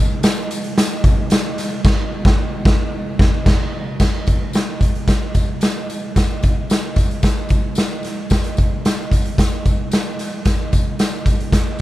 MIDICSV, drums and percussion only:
0, 0, Header, 1, 2, 480
1, 0, Start_track
1, 0, Tempo, 538117
1, 1649, Time_signature, 4, 2, 24, 8
1, 10537, End_track
2, 0, Start_track
2, 0, Title_t, "Drums"
2, 207, Note_on_c, 9, 42, 105
2, 208, Note_on_c, 9, 54, 105
2, 213, Note_on_c, 9, 38, 116
2, 296, Note_off_c, 9, 42, 0
2, 297, Note_off_c, 9, 54, 0
2, 302, Note_off_c, 9, 38, 0
2, 452, Note_on_c, 9, 42, 89
2, 454, Note_on_c, 9, 54, 52
2, 541, Note_off_c, 9, 42, 0
2, 543, Note_off_c, 9, 54, 0
2, 571, Note_on_c, 9, 42, 55
2, 661, Note_off_c, 9, 42, 0
2, 692, Note_on_c, 9, 38, 127
2, 695, Note_on_c, 9, 42, 115
2, 700, Note_on_c, 9, 54, 100
2, 781, Note_off_c, 9, 38, 0
2, 784, Note_off_c, 9, 42, 0
2, 789, Note_off_c, 9, 54, 0
2, 928, Note_on_c, 9, 36, 94
2, 930, Note_on_c, 9, 42, 63
2, 935, Note_on_c, 9, 54, 51
2, 1017, Note_off_c, 9, 36, 0
2, 1019, Note_off_c, 9, 42, 0
2, 1024, Note_off_c, 9, 54, 0
2, 1160, Note_on_c, 9, 42, 91
2, 1169, Note_on_c, 9, 54, 105
2, 1177, Note_on_c, 9, 38, 120
2, 1249, Note_off_c, 9, 42, 0
2, 1258, Note_off_c, 9, 54, 0
2, 1266, Note_off_c, 9, 38, 0
2, 1409, Note_on_c, 9, 42, 84
2, 1415, Note_on_c, 9, 54, 48
2, 1417, Note_on_c, 9, 38, 31
2, 1499, Note_off_c, 9, 42, 0
2, 1504, Note_off_c, 9, 54, 0
2, 1506, Note_off_c, 9, 38, 0
2, 1647, Note_on_c, 9, 36, 108
2, 1652, Note_on_c, 9, 49, 84
2, 1660, Note_on_c, 9, 38, 109
2, 1736, Note_off_c, 9, 36, 0
2, 1741, Note_off_c, 9, 49, 0
2, 1749, Note_off_c, 9, 38, 0
2, 2007, Note_on_c, 9, 36, 118
2, 2017, Note_on_c, 9, 38, 116
2, 2096, Note_off_c, 9, 36, 0
2, 2107, Note_off_c, 9, 38, 0
2, 2367, Note_on_c, 9, 36, 111
2, 2373, Note_on_c, 9, 38, 116
2, 2456, Note_off_c, 9, 36, 0
2, 2463, Note_off_c, 9, 38, 0
2, 2849, Note_on_c, 9, 36, 114
2, 2859, Note_on_c, 9, 38, 100
2, 2938, Note_off_c, 9, 36, 0
2, 2948, Note_off_c, 9, 38, 0
2, 3088, Note_on_c, 9, 36, 103
2, 3089, Note_on_c, 9, 49, 85
2, 3097, Note_on_c, 9, 38, 102
2, 3177, Note_off_c, 9, 36, 0
2, 3178, Note_off_c, 9, 49, 0
2, 3186, Note_off_c, 9, 38, 0
2, 3566, Note_on_c, 9, 54, 95
2, 3567, Note_on_c, 9, 36, 104
2, 3567, Note_on_c, 9, 49, 91
2, 3575, Note_on_c, 9, 38, 112
2, 3655, Note_off_c, 9, 54, 0
2, 3656, Note_off_c, 9, 49, 0
2, 3657, Note_off_c, 9, 36, 0
2, 3665, Note_off_c, 9, 38, 0
2, 3806, Note_on_c, 9, 54, 58
2, 3814, Note_on_c, 9, 36, 90
2, 3815, Note_on_c, 9, 42, 71
2, 3895, Note_off_c, 9, 54, 0
2, 3904, Note_off_c, 9, 36, 0
2, 3905, Note_off_c, 9, 42, 0
2, 4044, Note_on_c, 9, 54, 99
2, 4056, Note_on_c, 9, 42, 96
2, 4062, Note_on_c, 9, 38, 107
2, 4133, Note_off_c, 9, 54, 0
2, 4145, Note_off_c, 9, 42, 0
2, 4151, Note_off_c, 9, 38, 0
2, 4289, Note_on_c, 9, 36, 81
2, 4292, Note_on_c, 9, 54, 49
2, 4302, Note_on_c, 9, 42, 82
2, 4378, Note_off_c, 9, 36, 0
2, 4381, Note_off_c, 9, 54, 0
2, 4391, Note_off_c, 9, 42, 0
2, 4417, Note_on_c, 9, 42, 45
2, 4506, Note_off_c, 9, 42, 0
2, 4528, Note_on_c, 9, 36, 90
2, 4531, Note_on_c, 9, 54, 90
2, 4537, Note_on_c, 9, 38, 109
2, 4540, Note_on_c, 9, 42, 98
2, 4617, Note_off_c, 9, 36, 0
2, 4620, Note_off_c, 9, 54, 0
2, 4626, Note_off_c, 9, 38, 0
2, 4629, Note_off_c, 9, 42, 0
2, 4768, Note_on_c, 9, 42, 62
2, 4768, Note_on_c, 9, 54, 51
2, 4771, Note_on_c, 9, 36, 82
2, 4858, Note_off_c, 9, 42, 0
2, 4858, Note_off_c, 9, 54, 0
2, 4860, Note_off_c, 9, 36, 0
2, 5003, Note_on_c, 9, 42, 86
2, 5010, Note_on_c, 9, 54, 95
2, 5020, Note_on_c, 9, 38, 108
2, 5092, Note_off_c, 9, 42, 0
2, 5099, Note_off_c, 9, 54, 0
2, 5109, Note_off_c, 9, 38, 0
2, 5259, Note_on_c, 9, 42, 74
2, 5260, Note_on_c, 9, 54, 49
2, 5348, Note_off_c, 9, 42, 0
2, 5350, Note_off_c, 9, 54, 0
2, 5496, Note_on_c, 9, 36, 111
2, 5499, Note_on_c, 9, 42, 88
2, 5499, Note_on_c, 9, 54, 93
2, 5508, Note_on_c, 9, 38, 112
2, 5585, Note_off_c, 9, 36, 0
2, 5588, Note_off_c, 9, 42, 0
2, 5588, Note_off_c, 9, 54, 0
2, 5597, Note_off_c, 9, 38, 0
2, 5732, Note_on_c, 9, 54, 59
2, 5741, Note_on_c, 9, 36, 96
2, 5746, Note_on_c, 9, 42, 70
2, 5822, Note_off_c, 9, 54, 0
2, 5831, Note_off_c, 9, 36, 0
2, 5835, Note_off_c, 9, 42, 0
2, 5975, Note_on_c, 9, 54, 100
2, 5981, Note_on_c, 9, 42, 108
2, 5987, Note_on_c, 9, 38, 109
2, 6064, Note_off_c, 9, 54, 0
2, 6071, Note_off_c, 9, 42, 0
2, 6076, Note_off_c, 9, 38, 0
2, 6208, Note_on_c, 9, 54, 55
2, 6213, Note_on_c, 9, 36, 90
2, 6225, Note_on_c, 9, 42, 88
2, 6297, Note_off_c, 9, 54, 0
2, 6302, Note_off_c, 9, 36, 0
2, 6314, Note_off_c, 9, 42, 0
2, 6341, Note_on_c, 9, 42, 46
2, 6430, Note_off_c, 9, 42, 0
2, 6447, Note_on_c, 9, 54, 93
2, 6450, Note_on_c, 9, 36, 95
2, 6459, Note_on_c, 9, 38, 113
2, 6461, Note_on_c, 9, 42, 94
2, 6537, Note_off_c, 9, 54, 0
2, 6540, Note_off_c, 9, 36, 0
2, 6548, Note_off_c, 9, 38, 0
2, 6551, Note_off_c, 9, 42, 0
2, 6680, Note_on_c, 9, 54, 52
2, 6690, Note_on_c, 9, 42, 66
2, 6694, Note_on_c, 9, 36, 92
2, 6769, Note_off_c, 9, 54, 0
2, 6779, Note_off_c, 9, 42, 0
2, 6784, Note_off_c, 9, 36, 0
2, 6916, Note_on_c, 9, 54, 98
2, 6923, Note_on_c, 9, 42, 93
2, 6940, Note_on_c, 9, 38, 108
2, 7005, Note_off_c, 9, 54, 0
2, 7012, Note_off_c, 9, 42, 0
2, 7029, Note_off_c, 9, 38, 0
2, 7161, Note_on_c, 9, 54, 43
2, 7176, Note_on_c, 9, 42, 75
2, 7183, Note_on_c, 9, 38, 29
2, 7251, Note_off_c, 9, 54, 0
2, 7265, Note_off_c, 9, 42, 0
2, 7273, Note_off_c, 9, 38, 0
2, 7403, Note_on_c, 9, 54, 81
2, 7409, Note_on_c, 9, 42, 87
2, 7413, Note_on_c, 9, 36, 99
2, 7418, Note_on_c, 9, 38, 114
2, 7493, Note_off_c, 9, 54, 0
2, 7499, Note_off_c, 9, 42, 0
2, 7502, Note_off_c, 9, 36, 0
2, 7508, Note_off_c, 9, 38, 0
2, 7529, Note_on_c, 9, 42, 60
2, 7618, Note_off_c, 9, 42, 0
2, 7645, Note_on_c, 9, 54, 64
2, 7657, Note_on_c, 9, 36, 95
2, 7658, Note_on_c, 9, 42, 70
2, 7734, Note_off_c, 9, 54, 0
2, 7747, Note_off_c, 9, 36, 0
2, 7747, Note_off_c, 9, 42, 0
2, 7895, Note_on_c, 9, 42, 103
2, 7899, Note_on_c, 9, 54, 88
2, 7901, Note_on_c, 9, 38, 113
2, 7984, Note_off_c, 9, 42, 0
2, 7988, Note_off_c, 9, 54, 0
2, 7990, Note_off_c, 9, 38, 0
2, 8131, Note_on_c, 9, 36, 85
2, 8138, Note_on_c, 9, 54, 53
2, 8141, Note_on_c, 9, 42, 90
2, 8220, Note_off_c, 9, 36, 0
2, 8227, Note_off_c, 9, 54, 0
2, 8231, Note_off_c, 9, 42, 0
2, 8256, Note_on_c, 9, 42, 52
2, 8345, Note_off_c, 9, 42, 0
2, 8370, Note_on_c, 9, 36, 91
2, 8373, Note_on_c, 9, 54, 99
2, 8377, Note_on_c, 9, 38, 124
2, 8380, Note_on_c, 9, 42, 108
2, 8459, Note_off_c, 9, 36, 0
2, 8462, Note_off_c, 9, 54, 0
2, 8466, Note_off_c, 9, 38, 0
2, 8469, Note_off_c, 9, 42, 0
2, 8611, Note_on_c, 9, 42, 62
2, 8614, Note_on_c, 9, 36, 81
2, 8614, Note_on_c, 9, 54, 51
2, 8700, Note_off_c, 9, 42, 0
2, 8703, Note_off_c, 9, 36, 0
2, 8704, Note_off_c, 9, 54, 0
2, 8844, Note_on_c, 9, 42, 87
2, 8846, Note_on_c, 9, 54, 89
2, 8861, Note_on_c, 9, 38, 99
2, 8933, Note_off_c, 9, 42, 0
2, 8935, Note_off_c, 9, 54, 0
2, 8950, Note_off_c, 9, 38, 0
2, 9090, Note_on_c, 9, 42, 79
2, 9096, Note_on_c, 9, 54, 43
2, 9098, Note_on_c, 9, 38, 34
2, 9180, Note_off_c, 9, 42, 0
2, 9185, Note_off_c, 9, 54, 0
2, 9187, Note_off_c, 9, 38, 0
2, 9323, Note_on_c, 9, 42, 82
2, 9328, Note_on_c, 9, 36, 112
2, 9328, Note_on_c, 9, 54, 87
2, 9332, Note_on_c, 9, 38, 106
2, 9412, Note_off_c, 9, 42, 0
2, 9417, Note_off_c, 9, 36, 0
2, 9418, Note_off_c, 9, 54, 0
2, 9421, Note_off_c, 9, 38, 0
2, 9568, Note_on_c, 9, 54, 67
2, 9571, Note_on_c, 9, 42, 64
2, 9572, Note_on_c, 9, 36, 89
2, 9657, Note_off_c, 9, 54, 0
2, 9660, Note_off_c, 9, 42, 0
2, 9661, Note_off_c, 9, 36, 0
2, 9805, Note_on_c, 9, 42, 100
2, 9806, Note_on_c, 9, 54, 104
2, 9811, Note_on_c, 9, 38, 115
2, 9894, Note_off_c, 9, 42, 0
2, 9895, Note_off_c, 9, 54, 0
2, 9900, Note_off_c, 9, 38, 0
2, 10042, Note_on_c, 9, 36, 82
2, 10043, Note_on_c, 9, 54, 55
2, 10050, Note_on_c, 9, 42, 83
2, 10132, Note_off_c, 9, 36, 0
2, 10132, Note_off_c, 9, 54, 0
2, 10139, Note_off_c, 9, 42, 0
2, 10170, Note_on_c, 9, 42, 50
2, 10259, Note_off_c, 9, 42, 0
2, 10280, Note_on_c, 9, 36, 97
2, 10283, Note_on_c, 9, 54, 80
2, 10286, Note_on_c, 9, 38, 105
2, 10289, Note_on_c, 9, 42, 105
2, 10369, Note_off_c, 9, 36, 0
2, 10372, Note_off_c, 9, 54, 0
2, 10376, Note_off_c, 9, 38, 0
2, 10379, Note_off_c, 9, 42, 0
2, 10537, End_track
0, 0, End_of_file